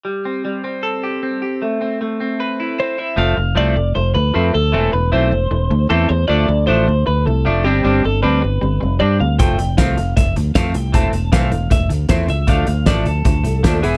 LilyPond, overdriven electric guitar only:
\new Staff \with { instrumentName = "Overdriven electric guitar" } { \time 4/4 \key a \minor \tempo 4 = 154 g8 c'8 g8 c'8 a'8 g'8 c'8 g'8 | a8 c'8 a8 c'8 b'8 e'8 c'8 e'8 | <f a c'>8 <f a>8 <f a c'>8 <f a>8 <f a>8 <f a>8 <f a c'>8 <f a>8 | <e a c'>8 <e a>8 <e a c'>8 <e a>8 <e a>8 <e a>8 <e a c'>8 <e a>8 |
<f a d'>8 <f a>8 <f a d'>8 <f a>8 <f a>8 <f a>8 <f a d'>8 <g c' d'>8 | <g c' d'>8 <g c'>8 <g c' d'>8 <g c'>8 <g c'>8 <g c'>8 <g c' d'>8 <g c'>8 | <f a c'>8 <f a>8 <f a c'>8 <f a>8 <f a>8 <f a>8 <f a c'>8 <f a>8 | <e a c'>8 <e a>8 <e a c'>8 <e a>8 <e a>8 <e a>8 <e a c'>8 <e a>8 |
<f a d'>8 <f a>8 <f a d'>8 <f a>8 <f a>8 <f a>8 <f a d'>8 <e b e'>8 | }